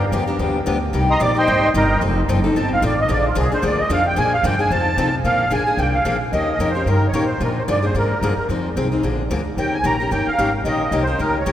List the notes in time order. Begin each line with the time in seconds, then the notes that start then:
Already playing: G2
0.12 F2 D3 F3 B3 D4 G4
0.27 B3 D4 G4
0.39 D#2 D3 F3 B3 D4 G4
0.66 D2 D3 F3 B3 D4 G4
0.93 C2 C3 G3 A#3 D#4 G4
1.10 D#5 A#5 C6 D#6
1.20 A#1 C3 G3 A#3 D#4 G4 D5 D6
1.35 A#3 D#4 G4 C5 D#5 G5 C6
1.47 G#1 C3 G3 A#3 D#4 G4
1.74 G1 C3 G3 A#3 D#4 G4 A#4 D#5 G5 A#5
2.01 F1 F3 C4 D#4 A4
2.28 F#1 F3 C4 D#4 A4
2.44 C4 D#4 A4
2.55 G1 F3 C4 D#4 A4 A5
2.73 F5
2.82 A1 F3 C4 D#4 A4
2.86 D5
3.01 D#5
3.08 A#1 D3 F3 A#3 D4 G#4 D5
3.27 F4
3.35 C2 D3 F3 A#3 D4 G#4
3.52 A#3 D4 G#4 C5, muted upright bass stroke
3.62 D2 D3 F3 A#3 D4 G#4 D5
3.80 D#5
3.90 F2 D3 F3 A#3 D4 G#4 F5
4.07 G5
4.16 A#2 D3 F3 A#3 D4 G#4 G#5
4.34 F5
4.43 G2 D3 F3 A#3 D4 G#4 G5
4.59 A#3 D4 G#4 G#5
4.70 F2 F3 C4 D#4 A4 A5
4.97 C3 F3 C4 D#4 A4
5.24 A#2 D3 F3 A#3 D4 G#4 F5
5.50 A#1 D3 F3 A#3 D4 G#4 G#5
5.67 A#3 D4 G#4
5.77 C2 D3 F3 A#3 D4 G#4 G5
5.94 F5
6.05 A#1 D3 F3 A#3 D4 G#4
6.32 D#2 D#3 A#3 C#4 G4 A#4 D#5
6.52 D#5
6.59 F2 D#3 A#3 C#4 G4 A#4
6.71 C5
6.75 C#4 G4 A#4
6.86 G2 D#3 A#3 C#4 G4 A#4
7.07 C#5
7.13 A#2 D#3 A#3 C#4 G4 A#4
7.26 C5
7.40 A#2 D3 F3 A#3 D4 G#4 A#4
7.58 C5
7.68 G2 D3 F3 A#3 D4 G#4 D5
7.83 A#3 D4 G#4 C5
7.95 G#2 D3 F3 A#3 D4 G#4 A#4
8.21 G2 D3 F3 A#3 D4 G#4
8.37 muted upright bass stroke
8.49 F2 F3 C4 D#4 G#4
8.76 C2 F3 C4 D#4 G#4
8.92 C4 D#4 G#4
9.03 A#1 D3 F3 A#3 D4 G#4
9.30 D2 D3 F3 A#3 D4 G#4
9.57 D#2 D#3 A#3 C#4 G4 A#4 G5
9.74 G#5
9.84 A#1 D#3 A#3 C#4 G4 A#4 A#5
10.00 C#4 G4 A#4
10.11 G1 D#3 A#3 C#4 G4 A#4 G5
10.27 F5, muted upright bass stroke
10.38 G#1 D#3 A#3 C#4 G4 A#4
10.65 A#1 D#3 A#3 C#4 G4 A#4 D#5
10.83 D#5
10.91 C2 D#3 A#3 C#4 G4 A#4
11.03 C5
11.07 C#4 G4 A#4
11.19 C#2 D#3 A#3 C#4 G4 A#4
11.39 C#5
11.46 D#2 D#3 A#3 C#4 G4 A#4